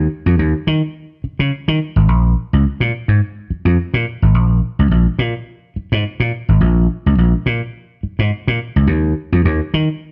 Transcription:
0.26 slap bass F2
0.39 slap bass D#2
0.67 slap bass D#3
1.24 muted slap bass stroke
1.39 slap bass C#3
1.68 slap bass D#3
1.96 slap bass G#1
2.09 slap bass A#1
2.53 slap bass C#2
2.65 muted slap bass stroke
2.80 slap bass A#2
3.08 slap bass G#2
3.50 muted slap bass stroke
3.65 slap bass F2
3.94 slap bass A#2
4.22 slap bass G#1
4.35 slap bass A#1
4.79 slap bass C#2
4.91 slap bass A#1
5.19 slap bass A#2
5.76 muted slap bass stroke
5.92 slap bass G#2
6.20 slap bass A#2
6.49 slap bass G#1
6.61 slap bass A#1
7.06 slap bass C#2
7.18 slap bass A#1
7.46 slap bass A#2
8.03 muted slap bass stroke
8.19 slap bass G#2
8.48 slap bass A#2
8.76 slap bass C#2
8.87 slap bass D#2
9.32 slap bass F2
9.45 slap bass D#2
9.74 slap bass D#3

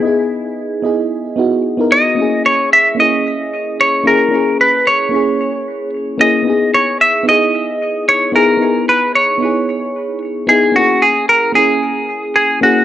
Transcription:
Already playing: fm electric piano D#4 E4 G#4 D#5, clean electric guitar E4
0.00 fm electric piano B3 D#5
0.05 fm electric piano E4 G#4
0.82 fm electric piano B3 E4 G#4 D#5
1.36 fm electric piano B3 D#4 E4 F#4
1.77 fm electric piano B3 D#4 E4 A#4
1.92 clean electric guitar D#5
2.15 fm electric piano A#3 C#4
2.19 fm electric piano E4 G#4
2.46 clean electric guitar C#5
2.73 clean electric guitar E5
2.95 fm electric piano A#3 C#4
2.99 fm electric piano E4 G#4, clean electric guitar D#5
3.81 clean electric guitar C#5
4.04 fm electric piano A#3 C#4 E4 G#4, clean electric guitar A#4
4.28 fm electric piano A#3 C#4
4.33 fm electric piano E4 G#4
4.61 clean electric guitar B4
4.87 clean electric guitar C#5
5.09 fm electric piano A#3 C#4
5.14 fm electric piano E4 G#4
6.18 fm electric piano A#3 C#4 E4 G#4, clean electric guitar D#5
6.43 fm electric piano B3 D#4
6.47 fm electric piano E4 G#4
6.75 clean electric guitar C#5
7.01 clean electric guitar E5
7.23 fm electric piano B3 D#4
7.28 fm electric piano E4 G#4, clean electric guitar D#5
8.09 clean electric guitar C#5
8.32 fm electric piano B3 D#4 E4 G#4, clean electric guitar A#4
8.57 fm electric piano B3 D#4
8.62 fm electric piano E4 G#4
8.89 clean electric guitar B4
9.15 clean electric guitar C#5
9.38 fm electric piano B3 D#4
9.43 fm electric piano E4 G#4
10.47 fm electric piano B3 D#4 E4 G#4, clean electric guitar G#4
10.72 fm electric piano A#3 C#4, clean electric guitar F#4
10.76 fm electric piano E4 G#4
11.02 clean electric guitar G#4
11.29 clean electric guitar A#4
11.52 fm electric piano A#3 C#4, clean electric guitar G#4
11.57 fm electric piano E4 G#4
12.36 clean electric guitar G#4
12.61 fm electric piano A#3 C#4 E4 G#4, clean electric guitar F#4

